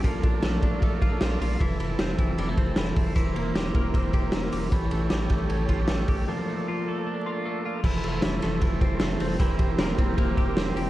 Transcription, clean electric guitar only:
X:1
M:4/4
L:1/16
Q:1/4=154
K:F
V:1 name="Clean electric guitar"
F,2 D2 A,2 D2 A,2 F2 C D F2 | E,2 E,2 C2 E,2 G, A, C2 E,2 C2 | E,2 B,2 G2 B,2 C2 G2 B,2 G2 | E,2 A,2 G2 A,2 ^C2 F G A,2 G2 |
F,2 A,2 F2 A,2 D2 F2 A,2 F2 | E,2 A,2 E,2 A,2 E,2 C2 A,2 C2 | E,2 C2 B,2 C2 B,2 G2 C2 G2 |]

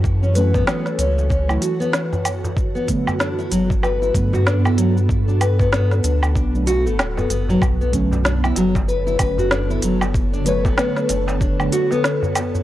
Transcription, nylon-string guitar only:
X:1
M:4/4
L:1/16
Q:"Swing 16ths" 1/4=95
K:Bm
V:1 name="Nylon-string guitar"
z C B B, B, z C2 C2 F B, z4 | z B, z2 D E F, z B E B F D E F, z | z D B B, B, z D2 D z F A, z B, B, F, | z B, z2 D E F, z B E B F D E F, z |
z D B B, B, z D2 D2 F B, z4 |]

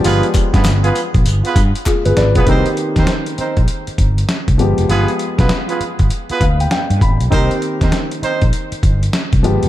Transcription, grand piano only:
X:1
M:4/4
L:1/16
Q:"Swing 16ths" 1/4=99
K:Cm
V:1 name="Grand piano"
z12 [FA] [A=B] [Bd] [AB]- | [A=B] z12 z3 | z8 z2 f g g2 =b2 | z16 |]
V:2 name="Grand piano"
[F,A,=B,DG]12- [F,A,B,DG]2 z2 | [E,B,CG]12- [E,B,CG]2 [F,A,=B,G]2- | [F,A,=B,G]12- [F,A,B,G]2 z2 | [E,B,CG]12- [E,B,CG]2 [F,A,=B,G]2 |]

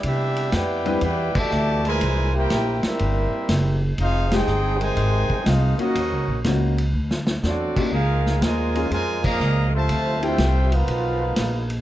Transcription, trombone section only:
X:1
M:4/4
L:1/8
Q:"Swing" 1/4=122
K:Flyd
V:1 name="Trombone section"
[G,B,E]2 [B,EG]2 [B,EG] [B,,E,A,]2 [_B,,E,_A,]- | [_B,,E,_A,] [_B,EG]2 [G,B,E]4 z | [_A,CF] [C_E_A]2 [C,_E,A,]3 [A,CF] [^F,_B,E]- | [^F,_B,_E]2 z4 [F,A,D]2 |
[_A,_B,F]2 [_B,,F,A,]2 [B,,F,A,] [B,,F,B,]2 [C,F,=A,]- | [C,F,A,] [A,CG]2 [F,B,F]4 z |]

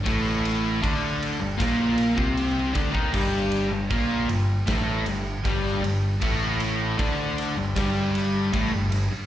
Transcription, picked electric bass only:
X:1
M:4/4
L:1/16
Q:1/4=78
K:Gm
V:1 name="Picked electric bass" clef=bass
A,,,4 D,,3 G,,, B,,,3 C,,3 D,, E,, | G,,,3 G,,, B,,,2 G,,,2 A,,,2 G,,,2 G,,,2 G,,,2 | A,,,4 D,,3 G,,, G,,,4 A,,, G,,, G,,, z |]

